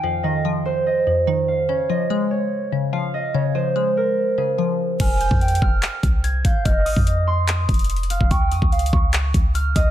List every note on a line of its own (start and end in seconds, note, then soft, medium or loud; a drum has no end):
0.00 1.06 F2 medium
0.00 0.23 D#3 medium
0.00 1.48 F5 medium
0.00 1.38 G5 medium
0.23 1.26 D#3 medium
0.23 0.86 D#5 medium
0.45 1.48 F3 medium
0.65 1.75 C5 medium
0.86 1.89 D#5 medium
1.07 1.69 F2 medium
1.27 1.69 D#3 medium
1.48 2.92 F5 medium
1.69 2.71 C#3 medium
1.69 2.31 C#5 medium
1.90 2.92 F3 medium
1.90 3.14 D#5 medium
2.10 3.14 G#3 medium
2.31 3.34 C#5 medium
2.72 3.33 C#3 medium
2.93 3.54 F3 medium
2.93 4.59 F5 medium
3.14 4.92 D#5 medium
3.34 4.37 C#3 loud
3.34 3.61 C#5 medium
3.55 4.57 F3 medium
3.55 5.53 C5 medium
3.76 4.79 G#3 medium
3.97 6.09 A#4 medium
4.38 5.00 C#3 medium
4.38 5.27 G#4 medium
4.58 5.00 F3 medium
5.00 5.30 F1 loud
5.00 5.39 G#5 loud
5.00 5.62 F6 medium
5.00 kick loud
5.00 closed hi-hat medium
5.00 crash loud
5.21 6.30 G6 medium
5.21 closed hi-hat medium
5.31 5.61 F2 loud
5.31 kick loud
5.41 5.80 G5 loud
5.41 closed hi-hat soft
5.48 closed hi-hat medium
5.55 closed hi-hat medium
5.62 5.82 F1 loud
5.62 6.65 F6 medium
5.62 kick loud
5.83 clap loud
5.83 closed hi-hat medium
6.03 6.43 C2 loud
6.03 kick loud
6.03 closed hi-hat medium
6.24 6.51 G#6 medium
6.24 closed hi-hat medium
6.45 6.65 G#1 loud
6.45 6.64 F5 medium
6.45 7.50 G6 medium
6.45 kick loud
6.45 closed hi-hat loud
6.65 6.88 F1 loud
6.65 7.04 D#5 loud
6.65 7.75 F6 medium
6.65 kick loud
6.65 closed hi-hat medium
6.85 6.96 G#1 loud
6.85 7.48 D#6 medium
6.85 open hi-hat medium
6.96 7.66 F2 loud
6.96 kick medium
7.07 7.46 D#5 medium
7.07 closed hi-hat medium
7.27 8.37 C6 medium
7.48 8.51 D#6 medium
7.48 clap loud
7.48 closed hi-hat medium
7.69 8.19 F1 loud
7.69 kick loud
7.69 closed hi-hat medium
7.74 closed hi-hat medium
7.79 closed hi-hat medium
7.84 closed hi-hat medium
7.90 closed hi-hat medium
7.96 closed hi-hat medium
8.03 closed hi-hat soft
8.10 8.30 F5 medium
8.10 9.20 F6 medium
8.10 closed hi-hat loud
8.21 8.30 D#1 loud
8.21 kick loud
8.31 8.53 C#2 loud
8.31 8.70 G5 loud
8.31 8.92 C#6 medium
8.31 kick loud
8.31 closed hi-hat medium
8.52 8.61 F2 loud
8.52 9.69 D#6 medium
8.52 closed hi-hat medium
8.62 8.92 C#2 loud
8.62 kick loud
8.72 9.11 F5 medium
8.72 closed hi-hat soft
8.79 closed hi-hat medium
8.86 closed hi-hat medium
8.93 9.33 C#2 loud
8.93 9.91 C#6 medium
8.93 kick loud
9.14 clap loud
9.14 closed hi-hat medium
9.34 9.74 C#2 loud
9.34 kick loud
9.34 closed hi-hat medium
9.55 9.91 F6 medium
9.55 closed hi-hat medium
9.76 9.91 C#2 loud
9.76 9.91 D#5 medium
9.76 9.91 D#6 medium
9.76 kick loud
9.76 closed hi-hat loud